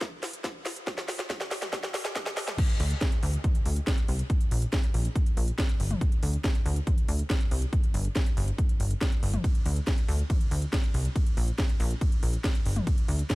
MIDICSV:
0, 0, Header, 1, 3, 480
1, 0, Start_track
1, 0, Tempo, 428571
1, 974, Time_signature, 4, 2, 24, 8
1, 14952, End_track
2, 0, Start_track
2, 0, Title_t, "Analog synth bass"
2, 0, Program_c, 0, 38
2, 3135, Note_on_c, 0, 38, 103
2, 3293, Note_off_c, 0, 38, 0
2, 3614, Note_on_c, 0, 38, 106
2, 3773, Note_off_c, 0, 38, 0
2, 4095, Note_on_c, 0, 38, 93
2, 4253, Note_off_c, 0, 38, 0
2, 4575, Note_on_c, 0, 36, 89
2, 4733, Note_off_c, 0, 36, 0
2, 5054, Note_on_c, 0, 34, 100
2, 5213, Note_off_c, 0, 34, 0
2, 5534, Note_on_c, 0, 34, 103
2, 5693, Note_off_c, 0, 34, 0
2, 6014, Note_on_c, 0, 34, 93
2, 6173, Note_off_c, 0, 34, 0
2, 6494, Note_on_c, 0, 31, 89
2, 6653, Note_off_c, 0, 31, 0
2, 6975, Note_on_c, 0, 38, 99
2, 7133, Note_off_c, 0, 38, 0
2, 7454, Note_on_c, 0, 38, 103
2, 7613, Note_off_c, 0, 38, 0
2, 7934, Note_on_c, 0, 38, 91
2, 8093, Note_off_c, 0, 38, 0
2, 8414, Note_on_c, 0, 36, 90
2, 8573, Note_off_c, 0, 36, 0
2, 8894, Note_on_c, 0, 31, 101
2, 9053, Note_off_c, 0, 31, 0
2, 9374, Note_on_c, 0, 31, 104
2, 9533, Note_off_c, 0, 31, 0
2, 9853, Note_on_c, 0, 31, 87
2, 10012, Note_off_c, 0, 31, 0
2, 10334, Note_on_c, 0, 31, 93
2, 10493, Note_off_c, 0, 31, 0
2, 10814, Note_on_c, 0, 38, 99
2, 10973, Note_off_c, 0, 38, 0
2, 11294, Note_on_c, 0, 38, 104
2, 11453, Note_off_c, 0, 38, 0
2, 11774, Note_on_c, 0, 38, 90
2, 11933, Note_off_c, 0, 38, 0
2, 12254, Note_on_c, 0, 36, 88
2, 12413, Note_off_c, 0, 36, 0
2, 12734, Note_on_c, 0, 34, 102
2, 12893, Note_off_c, 0, 34, 0
2, 13214, Note_on_c, 0, 34, 106
2, 13373, Note_off_c, 0, 34, 0
2, 13694, Note_on_c, 0, 34, 97
2, 13853, Note_off_c, 0, 34, 0
2, 14174, Note_on_c, 0, 31, 91
2, 14333, Note_off_c, 0, 31, 0
2, 14653, Note_on_c, 0, 38, 99
2, 14812, Note_off_c, 0, 38, 0
2, 14952, End_track
3, 0, Start_track
3, 0, Title_t, "Drums"
3, 13, Note_on_c, 9, 36, 127
3, 14, Note_on_c, 9, 38, 82
3, 14, Note_on_c, 9, 42, 64
3, 14, Note_on_c, 9, 47, 61
3, 125, Note_off_c, 9, 36, 0
3, 126, Note_off_c, 9, 38, 0
3, 126, Note_off_c, 9, 42, 0
3, 126, Note_off_c, 9, 47, 0
3, 255, Note_on_c, 9, 38, 81
3, 255, Note_on_c, 9, 46, 107
3, 367, Note_off_c, 9, 38, 0
3, 367, Note_off_c, 9, 46, 0
3, 375, Note_on_c, 9, 42, 65
3, 487, Note_off_c, 9, 42, 0
3, 493, Note_on_c, 9, 36, 122
3, 494, Note_on_c, 9, 38, 85
3, 494, Note_on_c, 9, 42, 66
3, 605, Note_off_c, 9, 36, 0
3, 606, Note_off_c, 9, 38, 0
3, 606, Note_off_c, 9, 42, 0
3, 734, Note_on_c, 9, 38, 88
3, 734, Note_on_c, 9, 46, 95
3, 846, Note_off_c, 9, 38, 0
3, 846, Note_off_c, 9, 46, 0
3, 855, Note_on_c, 9, 42, 64
3, 967, Note_off_c, 9, 42, 0
3, 974, Note_on_c, 9, 36, 122
3, 975, Note_on_c, 9, 38, 85
3, 975, Note_on_c, 9, 42, 58
3, 1086, Note_off_c, 9, 36, 0
3, 1087, Note_off_c, 9, 38, 0
3, 1087, Note_off_c, 9, 42, 0
3, 1094, Note_on_c, 9, 38, 83
3, 1206, Note_off_c, 9, 38, 0
3, 1214, Note_on_c, 9, 38, 91
3, 1214, Note_on_c, 9, 46, 107
3, 1326, Note_off_c, 9, 38, 0
3, 1326, Note_off_c, 9, 46, 0
3, 1334, Note_on_c, 9, 38, 85
3, 1334, Note_on_c, 9, 42, 61
3, 1446, Note_off_c, 9, 38, 0
3, 1446, Note_off_c, 9, 42, 0
3, 1453, Note_on_c, 9, 36, 127
3, 1454, Note_on_c, 9, 38, 94
3, 1454, Note_on_c, 9, 42, 61
3, 1565, Note_off_c, 9, 36, 0
3, 1566, Note_off_c, 9, 38, 0
3, 1566, Note_off_c, 9, 42, 0
3, 1574, Note_on_c, 9, 38, 91
3, 1686, Note_off_c, 9, 38, 0
3, 1694, Note_on_c, 9, 38, 98
3, 1694, Note_on_c, 9, 46, 89
3, 1806, Note_off_c, 9, 38, 0
3, 1806, Note_off_c, 9, 46, 0
3, 1814, Note_on_c, 9, 38, 88
3, 1814, Note_on_c, 9, 42, 60
3, 1814, Note_on_c, 9, 47, 60
3, 1926, Note_off_c, 9, 38, 0
3, 1926, Note_off_c, 9, 42, 0
3, 1926, Note_off_c, 9, 47, 0
3, 1934, Note_on_c, 9, 36, 125
3, 1934, Note_on_c, 9, 38, 106
3, 1934, Note_on_c, 9, 42, 66
3, 2046, Note_off_c, 9, 36, 0
3, 2046, Note_off_c, 9, 38, 0
3, 2046, Note_off_c, 9, 42, 0
3, 2054, Note_on_c, 9, 38, 95
3, 2166, Note_off_c, 9, 38, 0
3, 2174, Note_on_c, 9, 38, 107
3, 2174, Note_on_c, 9, 46, 108
3, 2286, Note_off_c, 9, 38, 0
3, 2286, Note_off_c, 9, 46, 0
3, 2293, Note_on_c, 9, 38, 98
3, 2293, Note_on_c, 9, 42, 64
3, 2405, Note_off_c, 9, 38, 0
3, 2405, Note_off_c, 9, 42, 0
3, 2414, Note_on_c, 9, 36, 124
3, 2414, Note_on_c, 9, 38, 111
3, 2414, Note_on_c, 9, 42, 64
3, 2526, Note_off_c, 9, 36, 0
3, 2526, Note_off_c, 9, 38, 0
3, 2526, Note_off_c, 9, 42, 0
3, 2534, Note_on_c, 9, 38, 94
3, 2646, Note_off_c, 9, 38, 0
3, 2654, Note_on_c, 9, 38, 113
3, 2654, Note_on_c, 9, 46, 97
3, 2766, Note_off_c, 9, 38, 0
3, 2766, Note_off_c, 9, 46, 0
3, 2774, Note_on_c, 9, 38, 95
3, 2774, Note_on_c, 9, 42, 62
3, 2774, Note_on_c, 9, 47, 82
3, 2886, Note_off_c, 9, 38, 0
3, 2886, Note_off_c, 9, 42, 0
3, 2886, Note_off_c, 9, 47, 0
3, 2894, Note_on_c, 9, 36, 121
3, 2894, Note_on_c, 9, 42, 80
3, 2894, Note_on_c, 9, 49, 101
3, 3006, Note_off_c, 9, 36, 0
3, 3006, Note_off_c, 9, 42, 0
3, 3006, Note_off_c, 9, 49, 0
3, 3014, Note_on_c, 9, 42, 55
3, 3126, Note_off_c, 9, 42, 0
3, 3134, Note_on_c, 9, 46, 109
3, 3246, Note_off_c, 9, 46, 0
3, 3254, Note_on_c, 9, 42, 57
3, 3366, Note_off_c, 9, 42, 0
3, 3374, Note_on_c, 9, 36, 124
3, 3374, Note_on_c, 9, 38, 117
3, 3374, Note_on_c, 9, 42, 83
3, 3486, Note_off_c, 9, 36, 0
3, 3486, Note_off_c, 9, 38, 0
3, 3486, Note_off_c, 9, 42, 0
3, 3494, Note_on_c, 9, 42, 59
3, 3606, Note_off_c, 9, 42, 0
3, 3614, Note_on_c, 9, 46, 92
3, 3726, Note_off_c, 9, 46, 0
3, 3734, Note_on_c, 9, 42, 54
3, 3846, Note_off_c, 9, 42, 0
3, 3854, Note_on_c, 9, 36, 123
3, 3855, Note_on_c, 9, 42, 87
3, 3855, Note_on_c, 9, 47, 61
3, 3966, Note_off_c, 9, 36, 0
3, 3967, Note_off_c, 9, 42, 0
3, 3967, Note_off_c, 9, 47, 0
3, 3974, Note_on_c, 9, 42, 56
3, 4086, Note_off_c, 9, 42, 0
3, 4094, Note_on_c, 9, 46, 104
3, 4206, Note_off_c, 9, 46, 0
3, 4214, Note_on_c, 9, 42, 57
3, 4326, Note_off_c, 9, 42, 0
3, 4334, Note_on_c, 9, 36, 118
3, 4334, Note_on_c, 9, 38, 124
3, 4334, Note_on_c, 9, 42, 85
3, 4446, Note_off_c, 9, 36, 0
3, 4446, Note_off_c, 9, 38, 0
3, 4446, Note_off_c, 9, 42, 0
3, 4454, Note_on_c, 9, 42, 56
3, 4566, Note_off_c, 9, 42, 0
3, 4574, Note_on_c, 9, 46, 94
3, 4686, Note_off_c, 9, 46, 0
3, 4694, Note_on_c, 9, 42, 57
3, 4806, Note_off_c, 9, 42, 0
3, 4814, Note_on_c, 9, 36, 127
3, 4814, Note_on_c, 9, 42, 79
3, 4926, Note_off_c, 9, 36, 0
3, 4926, Note_off_c, 9, 42, 0
3, 4935, Note_on_c, 9, 42, 54
3, 5047, Note_off_c, 9, 42, 0
3, 5054, Note_on_c, 9, 46, 106
3, 5166, Note_off_c, 9, 46, 0
3, 5175, Note_on_c, 9, 42, 53
3, 5287, Note_off_c, 9, 42, 0
3, 5294, Note_on_c, 9, 36, 121
3, 5294, Note_on_c, 9, 38, 121
3, 5294, Note_on_c, 9, 42, 75
3, 5406, Note_off_c, 9, 36, 0
3, 5406, Note_off_c, 9, 38, 0
3, 5406, Note_off_c, 9, 42, 0
3, 5415, Note_on_c, 9, 42, 55
3, 5527, Note_off_c, 9, 42, 0
3, 5535, Note_on_c, 9, 46, 92
3, 5647, Note_off_c, 9, 46, 0
3, 5656, Note_on_c, 9, 42, 51
3, 5768, Note_off_c, 9, 42, 0
3, 5774, Note_on_c, 9, 36, 127
3, 5775, Note_on_c, 9, 42, 84
3, 5886, Note_off_c, 9, 36, 0
3, 5887, Note_off_c, 9, 42, 0
3, 5895, Note_on_c, 9, 42, 54
3, 6007, Note_off_c, 9, 42, 0
3, 6015, Note_on_c, 9, 46, 106
3, 6127, Note_off_c, 9, 46, 0
3, 6135, Note_on_c, 9, 42, 54
3, 6247, Note_off_c, 9, 42, 0
3, 6254, Note_on_c, 9, 36, 120
3, 6255, Note_on_c, 9, 38, 127
3, 6255, Note_on_c, 9, 42, 81
3, 6366, Note_off_c, 9, 36, 0
3, 6367, Note_off_c, 9, 38, 0
3, 6367, Note_off_c, 9, 42, 0
3, 6375, Note_on_c, 9, 42, 53
3, 6487, Note_off_c, 9, 42, 0
3, 6495, Note_on_c, 9, 46, 96
3, 6607, Note_off_c, 9, 46, 0
3, 6616, Note_on_c, 9, 42, 53
3, 6616, Note_on_c, 9, 47, 78
3, 6728, Note_off_c, 9, 42, 0
3, 6728, Note_off_c, 9, 47, 0
3, 6734, Note_on_c, 9, 36, 125
3, 6735, Note_on_c, 9, 42, 76
3, 6846, Note_off_c, 9, 36, 0
3, 6847, Note_off_c, 9, 42, 0
3, 6854, Note_on_c, 9, 42, 53
3, 6966, Note_off_c, 9, 42, 0
3, 6974, Note_on_c, 9, 46, 117
3, 7086, Note_off_c, 9, 46, 0
3, 7094, Note_on_c, 9, 42, 51
3, 7206, Note_off_c, 9, 42, 0
3, 7214, Note_on_c, 9, 36, 123
3, 7215, Note_on_c, 9, 38, 121
3, 7215, Note_on_c, 9, 42, 75
3, 7326, Note_off_c, 9, 36, 0
3, 7327, Note_off_c, 9, 38, 0
3, 7327, Note_off_c, 9, 42, 0
3, 7335, Note_on_c, 9, 42, 53
3, 7447, Note_off_c, 9, 42, 0
3, 7455, Note_on_c, 9, 46, 91
3, 7567, Note_off_c, 9, 46, 0
3, 7575, Note_on_c, 9, 42, 52
3, 7687, Note_off_c, 9, 42, 0
3, 7694, Note_on_c, 9, 36, 126
3, 7695, Note_on_c, 9, 42, 82
3, 7695, Note_on_c, 9, 47, 63
3, 7806, Note_off_c, 9, 36, 0
3, 7807, Note_off_c, 9, 42, 0
3, 7807, Note_off_c, 9, 47, 0
3, 7814, Note_on_c, 9, 42, 55
3, 7926, Note_off_c, 9, 42, 0
3, 7935, Note_on_c, 9, 46, 112
3, 8047, Note_off_c, 9, 46, 0
3, 8055, Note_on_c, 9, 42, 55
3, 8167, Note_off_c, 9, 42, 0
3, 8174, Note_on_c, 9, 36, 126
3, 8175, Note_on_c, 9, 38, 123
3, 8175, Note_on_c, 9, 42, 77
3, 8286, Note_off_c, 9, 36, 0
3, 8287, Note_off_c, 9, 38, 0
3, 8287, Note_off_c, 9, 42, 0
3, 8295, Note_on_c, 9, 42, 51
3, 8407, Note_off_c, 9, 42, 0
3, 8414, Note_on_c, 9, 46, 95
3, 8526, Note_off_c, 9, 46, 0
3, 8535, Note_on_c, 9, 42, 53
3, 8647, Note_off_c, 9, 42, 0
3, 8654, Note_on_c, 9, 36, 126
3, 8654, Note_on_c, 9, 42, 74
3, 8766, Note_off_c, 9, 36, 0
3, 8766, Note_off_c, 9, 42, 0
3, 8775, Note_on_c, 9, 42, 51
3, 8887, Note_off_c, 9, 42, 0
3, 8894, Note_on_c, 9, 46, 108
3, 9006, Note_off_c, 9, 46, 0
3, 9014, Note_on_c, 9, 42, 51
3, 9126, Note_off_c, 9, 42, 0
3, 9134, Note_on_c, 9, 36, 127
3, 9134, Note_on_c, 9, 38, 117
3, 9134, Note_on_c, 9, 42, 73
3, 9246, Note_off_c, 9, 36, 0
3, 9246, Note_off_c, 9, 38, 0
3, 9246, Note_off_c, 9, 42, 0
3, 9255, Note_on_c, 9, 42, 52
3, 9367, Note_off_c, 9, 42, 0
3, 9375, Note_on_c, 9, 46, 94
3, 9487, Note_off_c, 9, 46, 0
3, 9495, Note_on_c, 9, 42, 47
3, 9607, Note_off_c, 9, 42, 0
3, 9614, Note_on_c, 9, 36, 120
3, 9615, Note_on_c, 9, 42, 77
3, 9726, Note_off_c, 9, 36, 0
3, 9727, Note_off_c, 9, 42, 0
3, 9735, Note_on_c, 9, 42, 51
3, 9847, Note_off_c, 9, 42, 0
3, 9855, Note_on_c, 9, 46, 111
3, 9967, Note_off_c, 9, 46, 0
3, 9975, Note_on_c, 9, 42, 54
3, 10087, Note_off_c, 9, 42, 0
3, 10094, Note_on_c, 9, 36, 118
3, 10095, Note_on_c, 9, 38, 119
3, 10095, Note_on_c, 9, 42, 76
3, 10206, Note_off_c, 9, 36, 0
3, 10207, Note_off_c, 9, 38, 0
3, 10207, Note_off_c, 9, 42, 0
3, 10215, Note_on_c, 9, 42, 49
3, 10327, Note_off_c, 9, 42, 0
3, 10335, Note_on_c, 9, 46, 97
3, 10447, Note_off_c, 9, 46, 0
3, 10456, Note_on_c, 9, 42, 51
3, 10456, Note_on_c, 9, 47, 81
3, 10568, Note_off_c, 9, 42, 0
3, 10568, Note_off_c, 9, 47, 0
3, 10574, Note_on_c, 9, 36, 122
3, 10575, Note_on_c, 9, 42, 72
3, 10575, Note_on_c, 9, 51, 65
3, 10686, Note_off_c, 9, 36, 0
3, 10687, Note_off_c, 9, 42, 0
3, 10687, Note_off_c, 9, 51, 0
3, 10695, Note_on_c, 9, 42, 52
3, 10807, Note_off_c, 9, 42, 0
3, 10814, Note_on_c, 9, 46, 105
3, 10926, Note_off_c, 9, 46, 0
3, 10935, Note_on_c, 9, 42, 53
3, 11047, Note_off_c, 9, 42, 0
3, 11054, Note_on_c, 9, 36, 118
3, 11055, Note_on_c, 9, 38, 109
3, 11055, Note_on_c, 9, 42, 73
3, 11055, Note_on_c, 9, 51, 66
3, 11166, Note_off_c, 9, 36, 0
3, 11167, Note_off_c, 9, 38, 0
3, 11167, Note_off_c, 9, 42, 0
3, 11167, Note_off_c, 9, 51, 0
3, 11175, Note_on_c, 9, 42, 55
3, 11287, Note_off_c, 9, 42, 0
3, 11295, Note_on_c, 9, 46, 90
3, 11407, Note_off_c, 9, 46, 0
3, 11416, Note_on_c, 9, 42, 47
3, 11528, Note_off_c, 9, 42, 0
3, 11534, Note_on_c, 9, 36, 119
3, 11535, Note_on_c, 9, 42, 79
3, 11535, Note_on_c, 9, 47, 66
3, 11535, Note_on_c, 9, 51, 71
3, 11646, Note_off_c, 9, 36, 0
3, 11647, Note_off_c, 9, 42, 0
3, 11647, Note_off_c, 9, 47, 0
3, 11647, Note_off_c, 9, 51, 0
3, 11656, Note_on_c, 9, 42, 52
3, 11768, Note_off_c, 9, 42, 0
3, 11774, Note_on_c, 9, 46, 106
3, 11886, Note_off_c, 9, 46, 0
3, 11895, Note_on_c, 9, 42, 55
3, 12007, Note_off_c, 9, 42, 0
3, 12014, Note_on_c, 9, 36, 117
3, 12015, Note_on_c, 9, 38, 117
3, 12015, Note_on_c, 9, 42, 81
3, 12015, Note_on_c, 9, 51, 69
3, 12126, Note_off_c, 9, 36, 0
3, 12127, Note_off_c, 9, 38, 0
3, 12127, Note_off_c, 9, 42, 0
3, 12127, Note_off_c, 9, 51, 0
3, 12136, Note_on_c, 9, 42, 50
3, 12248, Note_off_c, 9, 42, 0
3, 12255, Note_on_c, 9, 46, 89
3, 12367, Note_off_c, 9, 46, 0
3, 12376, Note_on_c, 9, 42, 54
3, 12488, Note_off_c, 9, 42, 0
3, 12494, Note_on_c, 9, 36, 115
3, 12495, Note_on_c, 9, 42, 75
3, 12495, Note_on_c, 9, 51, 66
3, 12606, Note_off_c, 9, 36, 0
3, 12607, Note_off_c, 9, 42, 0
3, 12607, Note_off_c, 9, 51, 0
3, 12616, Note_on_c, 9, 42, 53
3, 12728, Note_off_c, 9, 42, 0
3, 12736, Note_on_c, 9, 46, 99
3, 12848, Note_off_c, 9, 46, 0
3, 12855, Note_on_c, 9, 42, 54
3, 12967, Note_off_c, 9, 42, 0
3, 12974, Note_on_c, 9, 36, 119
3, 12975, Note_on_c, 9, 38, 114
3, 12975, Note_on_c, 9, 42, 75
3, 12975, Note_on_c, 9, 51, 68
3, 13086, Note_off_c, 9, 36, 0
3, 13087, Note_off_c, 9, 38, 0
3, 13087, Note_off_c, 9, 42, 0
3, 13087, Note_off_c, 9, 51, 0
3, 13095, Note_on_c, 9, 42, 54
3, 13207, Note_off_c, 9, 42, 0
3, 13214, Note_on_c, 9, 46, 92
3, 13326, Note_off_c, 9, 46, 0
3, 13335, Note_on_c, 9, 42, 50
3, 13447, Note_off_c, 9, 42, 0
3, 13454, Note_on_c, 9, 36, 118
3, 13455, Note_on_c, 9, 42, 78
3, 13455, Note_on_c, 9, 51, 72
3, 13566, Note_off_c, 9, 36, 0
3, 13567, Note_off_c, 9, 42, 0
3, 13567, Note_off_c, 9, 51, 0
3, 13575, Note_on_c, 9, 42, 53
3, 13687, Note_off_c, 9, 42, 0
3, 13694, Note_on_c, 9, 46, 105
3, 13806, Note_off_c, 9, 46, 0
3, 13814, Note_on_c, 9, 42, 55
3, 13926, Note_off_c, 9, 42, 0
3, 13934, Note_on_c, 9, 36, 111
3, 13934, Note_on_c, 9, 38, 110
3, 13934, Note_on_c, 9, 42, 77
3, 13934, Note_on_c, 9, 51, 72
3, 14046, Note_off_c, 9, 36, 0
3, 14046, Note_off_c, 9, 38, 0
3, 14046, Note_off_c, 9, 42, 0
3, 14046, Note_off_c, 9, 51, 0
3, 14054, Note_on_c, 9, 42, 52
3, 14166, Note_off_c, 9, 42, 0
3, 14174, Note_on_c, 9, 46, 92
3, 14286, Note_off_c, 9, 46, 0
3, 14294, Note_on_c, 9, 42, 53
3, 14294, Note_on_c, 9, 47, 84
3, 14406, Note_off_c, 9, 42, 0
3, 14406, Note_off_c, 9, 47, 0
3, 14414, Note_on_c, 9, 36, 117
3, 14415, Note_on_c, 9, 42, 76
3, 14415, Note_on_c, 9, 51, 68
3, 14526, Note_off_c, 9, 36, 0
3, 14527, Note_off_c, 9, 42, 0
3, 14527, Note_off_c, 9, 51, 0
3, 14534, Note_on_c, 9, 42, 55
3, 14646, Note_off_c, 9, 42, 0
3, 14654, Note_on_c, 9, 46, 100
3, 14766, Note_off_c, 9, 46, 0
3, 14774, Note_on_c, 9, 42, 56
3, 14886, Note_off_c, 9, 42, 0
3, 14894, Note_on_c, 9, 36, 115
3, 14894, Note_on_c, 9, 38, 116
3, 14894, Note_on_c, 9, 42, 82
3, 14894, Note_on_c, 9, 51, 69
3, 14952, Note_off_c, 9, 36, 0
3, 14952, Note_off_c, 9, 38, 0
3, 14952, Note_off_c, 9, 42, 0
3, 14952, Note_off_c, 9, 51, 0
3, 14952, End_track
0, 0, End_of_file